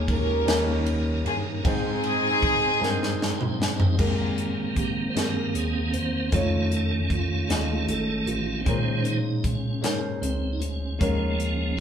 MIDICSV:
0, 0, Header, 1, 6, 480
1, 0, Start_track
1, 0, Key_signature, -4, "major"
1, 0, Tempo, 780234
1, 1013, Time_signature, 6, 3, 24, 8
1, 7260, End_track
2, 0, Start_track
2, 0, Title_t, "String section"
2, 0, Program_c, 0, 48
2, 62, Note_on_c, 0, 70, 92
2, 67, Note_on_c, 0, 61, 69
2, 67, Note_on_c, 0, 67, 64
2, 513, Note_off_c, 0, 70, 0
2, 756, Note_off_c, 0, 61, 0
2, 756, Note_off_c, 0, 67, 0
2, 785, Note_on_c, 0, 68, 95
2, 891, Note_off_c, 0, 68, 0
2, 1023, Note_on_c, 0, 60, 89
2, 1023, Note_on_c, 0, 68, 127
2, 1024, Note_on_c, 0, 63, 98
2, 2194, Note_off_c, 0, 60, 0
2, 2194, Note_off_c, 0, 68, 0
2, 2195, Note_off_c, 0, 63, 0
2, 7260, End_track
3, 0, Start_track
3, 0, Title_t, "Grand piano"
3, 0, Program_c, 1, 0
3, 0, Control_c, 1, 64, 127
3, 0, Note_on_c, 1, 51, 61
3, 0, Note_on_c, 1, 56, 76
3, 0, Note_on_c, 1, 58, 74
3, 0, Note_on_c, 1, 61, 73
3, 0, Note_on_c, 1, 63, 71
3, 0, Note_on_c, 1, 70, 86
3, 271, Note_off_c, 1, 51, 0
3, 280, Note_on_c, 1, 55, 75
3, 284, Note_off_c, 1, 58, 0
3, 284, Note_on_c, 1, 58, 72
3, 289, Note_off_c, 1, 61, 0
3, 289, Note_on_c, 1, 61, 70
3, 291, Note_on_c, 1, 51, 65
3, 296, Note_off_c, 1, 63, 0
3, 296, Note_on_c, 1, 63, 67
3, 301, Control_c, 1, 64, 0
3, 302, Note_off_c, 1, 70, 0
3, 302, Note_on_c, 1, 70, 83
3, 306, Note_off_c, 1, 56, 0
3, 420, Control_c, 1, 64, 127
3, 756, Note_off_c, 1, 55, 0
3, 758, Note_off_c, 1, 58, 0
3, 761, Note_off_c, 1, 61, 0
3, 764, Note_off_c, 1, 63, 0
3, 767, Note_off_c, 1, 70, 0
3, 988, Note_off_c, 1, 51, 0
3, 1002, Note_on_c, 1, 56, 77
3, 1006, Note_on_c, 1, 60, 71
3, 1011, Note_on_c, 1, 44, 62
3, 1012, Note_on_c, 1, 63, 72
3, 1017, Note_on_c, 1, 79, 74
3, 1022, Control_c, 1, 64, 0
3, 1025, Note_on_c, 1, 72, 85
3, 1113, Control_c, 1, 64, 127
3, 1478, Note_off_c, 1, 56, 0
3, 1479, Note_off_c, 1, 60, 0
3, 1482, Note_off_c, 1, 63, 0
3, 1485, Note_off_c, 1, 79, 0
3, 1489, Note_off_c, 1, 72, 0
3, 1708, Note_off_c, 1, 44, 0
3, 1719, Note_on_c, 1, 68, 91
3, 1725, Note_on_c, 1, 60, 78
3, 1730, Note_on_c, 1, 63, 78
3, 1737, Note_on_c, 1, 79, 78
3, 1741, Note_on_c, 1, 70, 72
3, 1777, Note_off_c, 1, 70, 0
3, 1781, Note_on_c, 1, 72, 96
3, 2196, Note_off_c, 1, 68, 0
3, 2199, Note_off_c, 1, 60, 0
3, 2201, Note_off_c, 1, 63, 0
3, 2205, Note_off_c, 1, 79, 0
3, 2227, Note_off_c, 1, 72, 0
3, 2443, Note_on_c, 1, 56, 76
3, 2450, Note_on_c, 1, 60, 68
3, 2453, Note_on_c, 1, 44, 64
3, 2458, Note_on_c, 1, 67, 73
3, 2461, Control_c, 1, 64, 0
3, 2464, Note_on_c, 1, 70, 83
3, 2569, Control_c, 1, 64, 127
3, 2918, Note_off_c, 1, 56, 0
3, 2922, Note_off_c, 1, 60, 0
3, 2926, Note_off_c, 1, 67, 0
3, 2928, Note_off_c, 1, 70, 0
3, 3149, Note_off_c, 1, 44, 0
3, 3165, Note_on_c, 1, 68, 61
3, 3172, Note_on_c, 1, 60, 57
3, 3178, Note_on_c, 1, 67, 55
3, 3187, Note_on_c, 1, 72, 72
3, 3639, Note_off_c, 1, 68, 0
3, 3642, Note_off_c, 1, 60, 0
3, 3645, Note_off_c, 1, 67, 0
3, 3650, Note_off_c, 1, 72, 0
3, 3887, Note_on_c, 1, 57, 71
3, 3892, Note_on_c, 1, 63, 62
3, 3901, Control_c, 1, 64, 0
3, 3901, Note_on_c, 1, 65, 63
3, 3905, Note_on_c, 1, 73, 82
3, 4012, Control_c, 1, 64, 127
3, 4359, Note_off_c, 1, 57, 0
3, 4362, Note_off_c, 1, 63, 0
3, 4367, Note_off_c, 1, 65, 0
3, 4369, Note_off_c, 1, 73, 0
3, 4601, Note_on_c, 1, 56, 51
3, 4608, Note_on_c, 1, 63, 61
3, 4614, Note_on_c, 1, 65, 61
3, 4624, Note_on_c, 1, 75, 70
3, 4643, Note_on_c, 1, 57, 62
3, 4647, Note_off_c, 1, 56, 0
3, 5080, Note_off_c, 1, 63, 0
3, 5083, Note_off_c, 1, 65, 0
3, 5088, Note_off_c, 1, 75, 0
3, 5097, Note_off_c, 1, 57, 0
3, 5322, Note_on_c, 1, 56, 78
3, 5329, Note_on_c, 1, 61, 62
3, 5330, Note_on_c, 1, 46, 59
3, 5335, Note_on_c, 1, 63, 64
3, 5340, Control_c, 1, 64, 0
3, 5343, Note_on_c, 1, 70, 64
3, 5377, Note_off_c, 1, 70, 0
3, 5383, Note_on_c, 1, 72, 76
3, 5447, Control_c, 1, 64, 127
3, 5796, Note_off_c, 1, 56, 0
3, 5800, Note_off_c, 1, 61, 0
3, 5803, Note_off_c, 1, 63, 0
3, 5827, Note_off_c, 1, 72, 0
3, 6026, Note_off_c, 1, 46, 0
3, 6036, Note_on_c, 1, 56, 70
3, 6041, Note_on_c, 1, 61, 67
3, 6050, Note_on_c, 1, 63, 59
3, 6057, Note_on_c, 1, 70, 61
3, 6094, Note_off_c, 1, 70, 0
3, 6098, Note_on_c, 1, 72, 73
3, 6513, Note_off_c, 1, 56, 0
3, 6515, Note_off_c, 1, 61, 0
3, 6520, Note_off_c, 1, 63, 0
3, 6544, Note_off_c, 1, 72, 0
3, 6758, Note_on_c, 1, 56, 74
3, 6765, Note_on_c, 1, 61, 71
3, 6769, Note_on_c, 1, 51, 55
3, 6771, Note_on_c, 1, 63, 68
3, 6779, Note_on_c, 1, 70, 81
3, 6781, Control_c, 1, 64, 0
3, 6898, Control_c, 1, 64, 127
3, 7233, Note_off_c, 1, 56, 0
3, 7237, Note_off_c, 1, 61, 0
3, 7240, Note_off_c, 1, 63, 0
3, 7244, Note_off_c, 1, 70, 0
3, 7260, Note_off_c, 1, 51, 0
3, 7260, End_track
4, 0, Start_track
4, 0, Title_t, "Tonewheel organ"
4, 0, Program_c, 2, 16
4, 0, Note_on_c, 2, 56, 65
4, 0, Note_on_c, 2, 58, 67
4, 0, Note_on_c, 2, 61, 60
4, 0, Note_on_c, 2, 63, 58
4, 0, Note_on_c, 2, 70, 75
4, 292, Note_off_c, 2, 61, 0
4, 293, Note_off_c, 2, 56, 0
4, 293, Note_off_c, 2, 63, 0
4, 294, Note_off_c, 2, 70, 0
4, 295, Note_off_c, 2, 58, 0
4, 304, Note_on_c, 2, 51, 75
4, 305, Note_on_c, 2, 58, 65
4, 307, Note_on_c, 2, 61, 64
4, 307, Note_on_c, 2, 70, 80
4, 308, Note_on_c, 2, 63, 63
4, 1015, Note_off_c, 2, 63, 0
4, 1019, Note_off_c, 2, 51, 0
4, 1020, Note_off_c, 2, 58, 0
4, 1020, Note_off_c, 2, 70, 0
4, 1021, Note_off_c, 2, 61, 0
4, 1022, Note_on_c, 2, 63, 63
4, 1023, Note_on_c, 2, 60, 61
4, 1024, Note_on_c, 2, 68, 65
4, 1024, Note_on_c, 2, 72, 72
4, 1986, Note_on_c, 2, 79, 72
4, 2203, Note_off_c, 2, 79, 0
4, 2227, Note_on_c, 2, 75, 69
4, 2434, Note_off_c, 2, 60, 0
4, 2434, Note_off_c, 2, 63, 0
4, 2435, Note_off_c, 2, 68, 0
4, 2435, Note_off_c, 2, 72, 0
4, 2444, Note_off_c, 2, 75, 0
4, 2458, Note_on_c, 2, 51, 49
4, 2463, Note_on_c, 2, 58, 44
4, 2467, Note_on_c, 2, 60, 55
4, 2939, Note_on_c, 2, 67, 90
4, 3027, Note_off_c, 2, 67, 0
4, 3135, Note_on_c, 2, 72, 65
4, 3176, Note_off_c, 2, 72, 0
4, 3180, Note_on_c, 2, 70, 88
4, 3368, Note_off_c, 2, 70, 0
4, 3375, Note_on_c, 2, 70, 67
4, 3410, Note_on_c, 2, 68, 84
4, 3416, Note_off_c, 2, 70, 0
4, 3635, Note_off_c, 2, 68, 0
4, 3653, Note_on_c, 2, 72, 90
4, 3871, Note_off_c, 2, 51, 0
4, 3874, Note_off_c, 2, 58, 0
4, 3876, Note_off_c, 2, 60, 0
4, 3894, Note_on_c, 2, 51, 54
4, 3895, Note_on_c, 2, 65, 88
4, 3896, Note_on_c, 2, 57, 48
4, 3898, Note_on_c, 2, 61, 56
4, 3901, Note_off_c, 2, 72, 0
4, 4142, Note_off_c, 2, 65, 0
4, 4150, Note_on_c, 2, 69, 87
4, 4254, Note_off_c, 2, 69, 0
4, 4384, Note_on_c, 2, 65, 85
4, 4834, Note_off_c, 2, 65, 0
4, 4860, Note_on_c, 2, 69, 85
4, 5092, Note_on_c, 2, 65, 81
4, 5103, Note_off_c, 2, 69, 0
4, 5289, Note_on_c, 2, 60, 60
4, 5296, Note_off_c, 2, 65, 0
4, 5308, Note_off_c, 2, 51, 0
4, 5310, Note_off_c, 2, 57, 0
4, 5311, Note_off_c, 2, 61, 0
4, 5320, Note_on_c, 2, 51, 50
4, 5320, Note_on_c, 2, 56, 47
4, 5325, Note_on_c, 2, 61, 80
4, 5325, Note_on_c, 2, 72, 46
4, 5332, Note_off_c, 2, 60, 0
4, 5560, Note_on_c, 2, 63, 81
4, 5577, Note_off_c, 2, 61, 0
4, 5645, Note_off_c, 2, 51, 0
4, 5645, Note_off_c, 2, 56, 0
4, 5647, Note_off_c, 2, 72, 0
4, 5807, Note_on_c, 2, 61, 85
4, 5813, Note_off_c, 2, 63, 0
4, 6045, Note_on_c, 2, 63, 93
4, 6057, Note_off_c, 2, 61, 0
4, 6155, Note_off_c, 2, 63, 0
4, 6287, Note_on_c, 2, 60, 83
4, 6476, Note_on_c, 2, 63, 64
4, 6492, Note_off_c, 2, 60, 0
4, 6520, Note_on_c, 2, 61, 83
4, 6525, Note_off_c, 2, 63, 0
4, 6756, Note_off_c, 2, 61, 0
4, 6760, Note_on_c, 2, 56, 52
4, 6761, Note_on_c, 2, 53, 57
4, 6764, Note_on_c, 2, 61, 53
4, 6955, Note_on_c, 2, 57, 53
4, 7004, Note_on_c, 2, 58, 69
4, 7005, Note_off_c, 2, 57, 0
4, 7230, Note_off_c, 2, 58, 0
4, 7260, Note_off_c, 2, 53, 0
4, 7260, Note_off_c, 2, 56, 0
4, 7260, Note_off_c, 2, 61, 0
4, 7260, End_track
5, 0, Start_track
5, 0, Title_t, "Tine electric piano"
5, 0, Program_c, 3, 4
5, 0, Note_on_c, 3, 39, 110
5, 267, Note_off_c, 3, 39, 0
5, 290, Note_on_c, 3, 39, 94
5, 747, Note_off_c, 3, 39, 0
5, 769, Note_on_c, 3, 43, 84
5, 992, Note_off_c, 3, 43, 0
5, 1013, Note_on_c, 3, 44, 106
5, 1709, Note_off_c, 3, 44, 0
5, 1729, Note_on_c, 3, 43, 99
5, 2187, Note_off_c, 3, 43, 0
5, 2211, Note_on_c, 3, 43, 77
5, 2433, Note_off_c, 3, 43, 0
5, 2452, Note_on_c, 3, 44, 89
5, 3148, Note_off_c, 3, 44, 0
5, 3172, Note_on_c, 3, 43, 86
5, 3394, Note_off_c, 3, 43, 0
5, 3412, Note_on_c, 3, 39, 75
5, 3634, Note_off_c, 3, 39, 0
5, 3649, Note_on_c, 3, 40, 67
5, 3872, Note_off_c, 3, 40, 0
5, 3891, Note_on_c, 3, 41, 89
5, 4587, Note_off_c, 3, 41, 0
5, 4607, Note_on_c, 3, 39, 84
5, 4830, Note_off_c, 3, 39, 0
5, 4842, Note_on_c, 3, 32, 88
5, 5068, Note_off_c, 3, 32, 0
5, 5085, Note_on_c, 3, 33, 84
5, 5309, Note_off_c, 3, 33, 0
5, 5331, Note_on_c, 3, 46, 103
5, 6026, Note_off_c, 3, 46, 0
5, 6045, Note_on_c, 3, 44, 81
5, 6269, Note_off_c, 3, 44, 0
5, 6285, Note_on_c, 3, 37, 82
5, 6509, Note_off_c, 3, 37, 0
5, 6524, Note_on_c, 3, 38, 74
5, 6748, Note_off_c, 3, 38, 0
5, 6771, Note_on_c, 3, 39, 100
5, 7260, Note_off_c, 3, 39, 0
5, 7260, End_track
6, 0, Start_track
6, 0, Title_t, "Drums"
6, 51, Note_on_c, 9, 36, 89
6, 51, Note_on_c, 9, 51, 46
6, 112, Note_off_c, 9, 36, 0
6, 112, Note_off_c, 9, 51, 0
6, 295, Note_on_c, 9, 51, 70
6, 298, Note_on_c, 9, 38, 109
6, 357, Note_off_c, 9, 51, 0
6, 359, Note_off_c, 9, 38, 0
6, 532, Note_on_c, 9, 51, 46
6, 593, Note_off_c, 9, 51, 0
6, 774, Note_on_c, 9, 51, 40
6, 836, Note_off_c, 9, 51, 0
6, 1014, Note_on_c, 9, 36, 104
6, 1015, Note_on_c, 9, 51, 59
6, 1076, Note_off_c, 9, 36, 0
6, 1076, Note_off_c, 9, 51, 0
6, 1253, Note_on_c, 9, 51, 37
6, 1314, Note_off_c, 9, 51, 0
6, 1492, Note_on_c, 9, 36, 89
6, 1495, Note_on_c, 9, 51, 43
6, 1554, Note_off_c, 9, 36, 0
6, 1556, Note_off_c, 9, 51, 0
6, 1743, Note_on_c, 9, 38, 55
6, 1805, Note_off_c, 9, 38, 0
6, 1865, Note_on_c, 9, 38, 61
6, 1926, Note_off_c, 9, 38, 0
6, 1984, Note_on_c, 9, 38, 82
6, 2045, Note_off_c, 9, 38, 0
6, 2096, Note_on_c, 9, 45, 72
6, 2158, Note_off_c, 9, 45, 0
6, 2225, Note_on_c, 9, 38, 99
6, 2287, Note_off_c, 9, 38, 0
6, 2336, Note_on_c, 9, 43, 101
6, 2397, Note_off_c, 9, 43, 0
6, 2454, Note_on_c, 9, 36, 87
6, 2454, Note_on_c, 9, 49, 74
6, 2515, Note_off_c, 9, 36, 0
6, 2515, Note_off_c, 9, 49, 0
6, 2694, Note_on_c, 9, 42, 33
6, 2755, Note_off_c, 9, 42, 0
6, 2931, Note_on_c, 9, 36, 80
6, 2931, Note_on_c, 9, 42, 47
6, 2993, Note_off_c, 9, 36, 0
6, 2993, Note_off_c, 9, 42, 0
6, 3179, Note_on_c, 9, 42, 75
6, 3182, Note_on_c, 9, 38, 81
6, 3240, Note_off_c, 9, 42, 0
6, 3243, Note_off_c, 9, 38, 0
6, 3416, Note_on_c, 9, 42, 49
6, 3477, Note_off_c, 9, 42, 0
6, 3652, Note_on_c, 9, 42, 44
6, 3713, Note_off_c, 9, 42, 0
6, 3890, Note_on_c, 9, 42, 62
6, 3891, Note_on_c, 9, 36, 92
6, 3951, Note_off_c, 9, 42, 0
6, 3953, Note_off_c, 9, 36, 0
6, 4132, Note_on_c, 9, 42, 40
6, 4194, Note_off_c, 9, 42, 0
6, 4369, Note_on_c, 9, 36, 79
6, 4370, Note_on_c, 9, 42, 45
6, 4430, Note_off_c, 9, 36, 0
6, 4431, Note_off_c, 9, 42, 0
6, 4615, Note_on_c, 9, 42, 77
6, 4618, Note_on_c, 9, 38, 87
6, 4677, Note_off_c, 9, 42, 0
6, 4679, Note_off_c, 9, 38, 0
6, 4851, Note_on_c, 9, 42, 47
6, 4912, Note_off_c, 9, 42, 0
6, 5090, Note_on_c, 9, 42, 41
6, 5152, Note_off_c, 9, 42, 0
6, 5330, Note_on_c, 9, 36, 96
6, 5330, Note_on_c, 9, 42, 60
6, 5391, Note_off_c, 9, 36, 0
6, 5392, Note_off_c, 9, 42, 0
6, 5568, Note_on_c, 9, 42, 39
6, 5629, Note_off_c, 9, 42, 0
6, 5808, Note_on_c, 9, 36, 78
6, 5809, Note_on_c, 9, 42, 50
6, 5870, Note_off_c, 9, 36, 0
6, 5870, Note_off_c, 9, 42, 0
6, 6052, Note_on_c, 9, 42, 72
6, 6055, Note_on_c, 9, 38, 97
6, 6114, Note_off_c, 9, 42, 0
6, 6117, Note_off_c, 9, 38, 0
6, 6293, Note_on_c, 9, 42, 50
6, 6355, Note_off_c, 9, 42, 0
6, 6532, Note_on_c, 9, 42, 45
6, 6593, Note_off_c, 9, 42, 0
6, 6772, Note_on_c, 9, 36, 92
6, 6773, Note_on_c, 9, 42, 67
6, 6834, Note_off_c, 9, 36, 0
6, 6834, Note_off_c, 9, 42, 0
6, 7012, Note_on_c, 9, 42, 37
6, 7074, Note_off_c, 9, 42, 0
6, 7260, End_track
0, 0, End_of_file